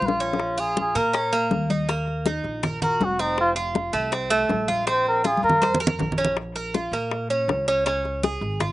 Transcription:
Already playing: cuban tres F4
0.01 upright bass A#1, high conga
0.07 muted trumpet F4, low bongo
0.20 cuban tres C#4
0.33 low bongo
0.40 high bongo, high conga
0.58 cuban tres F4, muted trumpet G#4, high conga
0.77 muted trumpet G#4, high bongo, high conga
0.95 upright bass A#2, cuban tres A#3, muted trumpet A#4, high bongo, high conga
1.13 cuban tres C#4, high bongo, high conga
1.33 cuban tres A#3, high bongo, high conga
1.51 upright bass D#2, high bongo, low bongo, high conga
1.70 cuban tres D#4, high bongo, high conga
1.89 cuban tres A#3, high bongo
2.08 high conga
2.26 cuban tres D#4, high bongo, high conga
2.44 upright bass A#1, high bongo, high conga
2.63 cuban tres A#4, high bongo, high conga, low conga
2.82 cuban tres F#4, muted trumpet A#4, high bongo, high conga, low conga
3.00 upright bass F1, high bongo, low bongo, high conga
3.05 muted trumpet F#4
3.19 cuban tres C4, muted trumpet D#4, high bongo
3.38 muted trumpet F4, high bongo, high conga
3.56 cuban tres F4, high conga
3.75 high bongo, high conga
3.93 upright bass C2, cuban tres A3, high bongo, high conga
4.12 cuban tres C4, high bongo, high conga
4.30 cuban tres A3, high bongo, high conga
4.49 upright bass A#1, high bongo, low bongo, high conga
4.68 cuban tres F4, high bongo, high conga
4.87 cuban tres C4, high bongo, high conga
4.91 muted trumpet C5
5.06 muted trumpet A#4, high conga
5.24 cuban tres F4, muted trumpet G#4, high bongo, high conga
5.37 high conga
5.43 upright bass F2, muted trumpet A#4, high bongo
5.50 low conga
5.62 cuban tres C5, high bongo, high conga
5.74 low conga
5.80 cuban tres A#4, high bongo
5.87 low conga
5.99 upright bass A#1, high bongo, low bongo, low conga
6.12 low conga
6.18 cuban tres C#4, high bongo
6.25 low conga
6.37 high bongo, high conga
6.56 cuban tres A#4, high bongo, high conga
6.74 cuban tres F4, high bongo, high conga
6.92 upright bass A#2, cuban tres A#3, high bongo
7.11 high bongo, high conga
7.30 cuban tres C#4, high conga
7.48 upright bass C#2, high bongo, low bongo, high conga
7.68 cuban tres C#4, high bongo, high conga
7.86 cuban tres C#4, high bongo, high conga
8.05 high bongo, high conga
8.23 cuban tres G#4, high bongo, high conga
8.41 upright bass G#1, high bongo, high conga
8.60 cuban tres F4, high bongo, high conga, low conga

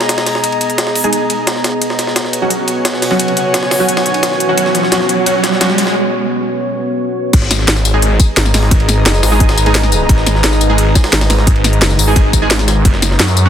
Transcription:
Already playing: ambient pad B3 G#4 D#5, analog synth pad G#4 D#5 A#5
0.01 snare, ride
0.09 snare, closed hi-hat, ride
0.18 snare, ride
0.26 snare, closed hi-hat, open hi-hat
0.35 snare
0.44 closed hi-hat, ride
0.52 ride
0.61 closed hi-hat, ride
0.70 closed hi-hat
0.78 snare, closed hi-hat, ride
0.87 snare
0.95 open hi-hat, ride
1.04 synth stab G#3 D#4 G#4, closed hi-hat
1.13 closed hi-hat, ride
1.30 closed hi-hat, ride
1.47 snare, closed hi-hat, ride
1.56 snare
1.64 snare, closed hi-hat, ride
1.82 analog synth pad F#4, ambient pad F#4 C#5, closed hi-hat, ride, riser
1.90 analog synth pad C#5, snare
1.99 snare, closed hi-hat, ride
2.07 snare
2.16 snare, closed hi-hat, ride
2.25 analog synth pad G#5, snare
2.33 closed hi-hat, ride
2.42 synth stab F#3 C#4 F#4
2.50 closed hi-hat, ride
2.68 closed hi-hat, ride
2.85 snare, closed hi-hat, ride
2.94 snare
3.02 snare, closed hi-hat, open hi-hat
3.11 synth stab F#3 C#4 F#4, snare
3.19 closed hi-hat, ride
3.28 ride
3.37 closed hi-hat, ride
3.54 snare, closed hi-hat, ride
3.63 snare
3.71 snare, open hi-hat, ride
3.80 synth stab F#3 C#4 F#4, snare
3.88 closed hi-hat, ride
3.97 snare, ride
4.06 snare, closed hi-hat
4.14 ride
4.23 snare, closed hi-hat, ride
4.32 snare
4.40 closed hi-hat, ride
4.49 synth stab F#3 C#4 F#4
4.57 synth stab F#3 C#4 F#4, closed hi-hat, ride
4.66 snare
4.75 snare, closed hi-hat, ride
4.83 snare
4.92 synth stab F#3 C#4 F#4, snare, closed hi-hat, ride
5.01 snare
5.09 closed hi-hat, ride
5.26 synth stab F#3 C#4 F#4, closed hi-hat, ride
5.44 snare, closed hi-hat, ride
5.52 snare
5.61 synth stab F#3 C#4 F#4, snare, closed hi-hat, ride
5.70 snare
5.78 snare, closed hi-hat, open hi-hat
5.87 snare
7.33 detuned saw bass G#1, ambient pad G#3 D#4 B4, analog synth pad G#4, kick, closed hi-hat, crash, ride
7.42 snare
7.50 detuned saw bass G#1, analog synth pad D#5, snare, closed hi-hat, ride, tambourine
7.59 snare
7.68 detuned saw bass G#1, snare, closed hi-hat, ride
7.76 snare, tambourine
7.85 closed hi-hat, ride, tambourine
7.90 synth stab G#3 D#4 G#4, analog synth pad A#5
8.02 closed hi-hat, ride
8.20 kick, closed hi-hat, ride, tambourine
8.37 detuned saw bass G#1, snare, closed hi-hat, ride
8.45 snare, tambourine
8.54 detuned saw bass G#1, snare, closed hi-hat, open hi-hat, tambourine
8.63 snare
8.71 kick, closed hi-hat, ride
8.80 ride
8.89 snare, closed hi-hat, ride, tambourine
9.06 detuned saw bass F#1, snare, closed hi-hat, ride
9.14 snare, tambourine
9.23 detuned saw bass G#1, snare, open hi-hat, ride, tambourine
9.32 synth stab G#3 D#4 G#4, snare
9.40 kick, closed hi-hat, ride
9.49 snare, ride
9.58 detuned saw bass G#1, snare, closed hi-hat, tambourine
9.66 synth stab G#3 D#4 G#4, ride
9.75 snare, closed hi-hat, ride
9.83 snare, tambourine
9.92 closed hi-hat, ride, tambourine
10.09 detuned saw bass G#1, kick, closed hi-hat, ride
10.18 snare
10.26 detuned saw bass G#1, snare, closed hi-hat, ride, tambourine
10.35 snare
10.44 detuned saw bass G#1, snare, closed hi-hat, ride
10.52 snare, tambourine
10.61 closed hi-hat, ride, tambourine
10.70 synth stab G#3 D#4 G#4
10.78 closed hi-hat, ride
10.95 kick, snare, closed hi-hat, ride, tambourine
11.04 snare, ride
11.13 detuned saw bass G#1, snare, closed hi-hat, ride
11.21 snare, ride, tambourine
11.30 detuned saw bass G#1, snare, closed hi-hat, open hi-hat, tambourine
11.38 snare
11.47 kick, closed hi-hat, ride
11.56 ride
11.64 snare, closed hi-hat, ride, tambourine
11.73 closed hi-hat
11.82 detuned saw bass F#1, snare, closed hi-hat, ride
11.90 snare, tambourine
11.99 detuned saw bass G#1, open hi-hat, ride, tambourine
12.07 synth stab G#3 D#4 G#4
12.16 kick, closed hi-hat, ride
12.33 detuned saw bass G#1, kick, closed hi-hat, ride, tambourine
12.42 synth stab G#3 D#4 G#4
12.51 snare, closed hi-hat, ride
12.59 snare, tambourine
12.68 snare, closed hi-hat, ride, tambourine
12.85 detuned saw bass F#1, ambient pad B3 F#4 C#5, analog synth pad F#4, kick, closed hi-hat, ride
12.94 snare
13.02 detuned saw bass F#1, snare, closed hi-hat, ride, tambourine
13.06 analog synth pad C#5
13.11 snare
13.19 detuned saw bass F#2, snare, closed hi-hat, ride
13.25 analog synth pad G#5, snare, tambourine
13.37 closed hi-hat, ride, tambourine
13.45 synth stab F#3 C#4 F#4

